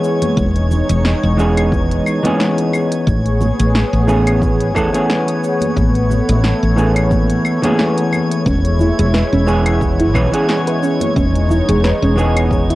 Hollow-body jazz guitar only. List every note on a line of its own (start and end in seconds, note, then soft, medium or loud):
0.00 1.34 E3 medium
0.00 1.34 G#3 medium
0.00 1.35 B3 medium
0.00 1.35 C#4 medium
0.00 1.36 G#4 loud
1.37 2.19 E3 medium
1.37 2.20 G#3 medium
1.37 2.20 B3 medium
1.37 2.21 C#4 medium
1.37 2.21 G#4 medium
2.23 3.04 E3 medium
2.23 3.05 G#3 medium
2.23 3.05 B3 medium
2.23 3.06 C#4 medium
2.23 3.06 G#4 loud
4.07 4.72 E3 medium
4.07 4.72 A3 medium
4.07 4.72 B3 medium
4.07 4.72 C#4 medium
4.07 4.72 G#4 loud
4.75 4.89 E3 loud
4.75 4.89 A3 medium
4.75 4.90 B3 medium
4.75 4.90 C#4 medium
4.75 4.90 A4 loud
4.92 6.73 E3 medium
4.92 6.74 A3 medium
4.92 6.74 B3 medium
4.92 6.75 C#4 medium
4.92 6.75 G#4 loud
6.76 7.59 E3 medium
6.76 7.59 A3 medium
6.76 7.59 B3 medium
6.76 7.60 C#4 medium
6.76 7.60 G#4 medium
7.62 8.44 E3 loud
7.62 8.44 A3 medium
7.62 8.44 B3 medium
7.62 8.45 C#4 medium
7.62 8.45 G#4 loud
9.46 10.11 E3 medium
9.46 10.11 G#3 medium
9.46 10.11 B3 medium
9.46 10.11 C#4 medium
9.46 10.12 G#4 loud
10.14 10.29 E3 loud
10.14 10.29 G#3 medium
10.14 10.29 B3 medium
10.14 10.29 C#4 medium
10.14 10.29 B4 loud
10.31 12.13 E3 medium
10.31 12.13 G#3 medium
10.31 12.13 B3 medium
10.31 12.14 C#4 medium
10.31 12.14 G#4 loud
12.15 12.75 E3 medium
12.15 12.75 G#3 medium
12.15 12.75 B3 medium
12.15 12.75 C#4 medium
12.15 12.75 G#4 loud